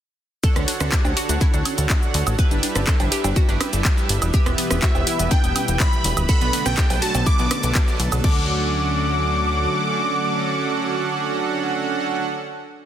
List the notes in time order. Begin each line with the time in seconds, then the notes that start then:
0.43 D3 D4 F#4 A4 C#5 F#5, kick, closed hi-hat, cabasa
0.56 D2 D4, cross-stick, closed hi-hat, cabasa
0.68 D4, closed hi-hat, open hi-hat
0.80 D2 D3 D4 F#4 A4 C#5 F#5, cross-stick, closed hi-hat, high conga, cabasa
0.92 G4, kick, snare, clap, closed hi-hat, cabasa
1.05 D2 D4, cowbell, cabasa
1.17 F#4, closed hi-hat, open hi-hat
1.29 D2 D4, closed hi-hat, cabasa
1.41 E4, kick, closed hi-hat, cabasa
1.54 D2 D4, closed hi-hat, cabasa
1.65 closed hi-hat, open hi-hat, high conga, high woodblock
1.78 D2, closed hi-hat, cabasa
1.90 kick, snare, clap, closed hi-hat, cabasa
2.02 cabasa
2.14 D2, closed hi-hat, open hi-hat
2.27 A1, closed hi-hat, cabasa, high woodblock
2.39 G3 D4 E4 G4 B4 E5, kick, closed hi-hat, cabasa
2.51 G1 D4, closed hi-hat, cabasa
2.63 D4, closed hi-hat, open hi-hat
2.75 G1 G3 D4 E4 G4 B4 E5, cross-stick, closed hi-hat, high conga, cabasa
2.87 A4, kick, snare, clap, closed hi-hat, cabasa
3.00 G1 D4, open hi-hat, cowbell, cabasa
3.12 G4, snare, closed hi-hat, open hi-hat
3.24 G1 D4, closed hi-hat, cowbell, cabasa
3.36 F#4, kick, closed hi-hat, cabasa
3.49 G1 D4, snare, closed hi-hat, cabasa
3.61 cross-stick, closed hi-hat, open hi-hat, high conga, high woodblock
3.73 G1, snare, closed hi-hat, cabasa
3.85 kick, snare, clap, closed hi-hat, cabasa
3.97 snare, cabasa
4.09 G1, closed hi-hat, open hi-hat
4.22 E1, closed hi-hat, cabasa, high woodblock
4.34 B2 E3 G3 E4 G4 B4 E5, kick, closed hi-hat, cabasa
4.46 E1 B3, cross-stick, closed hi-hat, cabasa
4.58 B3, closed hi-hat, open hi-hat
4.70 E1 E3 B3 G4 B4 E5, cross-stick, closed hi-hat, high conga, cabasa
4.82 F#4 E5, kick, snare, clap, closed hi-hat, cabasa
4.95 E1 B3, cowbell, cabasa
5.07 E4, closed hi-hat, open hi-hat
5.19 E1 B3, closed hi-hat, cabasa
5.31 D4 G5, kick, closed hi-hat, cabasa
5.44 E1 B3, closed hi-hat, cabasa
5.56 closed hi-hat, open hi-hat, high conga, high woodblock
5.68 E1, closed hi-hat, cabasa
5.80 B5, kick, snare, clap, closed hi-hat, cabasa
5.93 cabasa
6.04 E1, closed hi-hat, open hi-hat
6.17 D1, closed hi-hat, cabasa, high woodblock
6.29 B2 D3 F#3 A3 B3 D4 F#4 A4 B4 F#5 B5, kick, closed hi-hat, cabasa
6.41 B1 B3, closed hi-hat, cabasa
6.53 B3, closed hi-hat, open hi-hat
6.66 B1 B2 F#3 B3 D4 A4 B4 G5 A5, cross-stick, closed hi-hat, high conga, cabasa
6.77 G4, kick, snare, clap, closed hi-hat, cabasa
6.90 B1 B3, open hi-hat, cowbell, cabasa
7.02 F#4 A5, snare, closed hi-hat, open hi-hat
7.15 B1 B3, closed hi-hat, cowbell, cabasa
7.26 E4 D6, kick, closed hi-hat, cabasa
7.39 B1 B3, snare, closed hi-hat, cabasa
7.51 cross-stick, closed hi-hat, open hi-hat, high conga, high woodblock
7.63 B1, snare, closed hi-hat, cabasa
7.75 kick, snare, clap, closed hi-hat, cabasa
7.88 snare, cabasa
8.00 B1, closed hi-hat, open hi-hat
8.12 B1, closed hi-hat, cabasa, high woodblock
8.24 D2 D3 F#3 A3 C#4 D4 F#4 A4 F#5 D6, kick, crash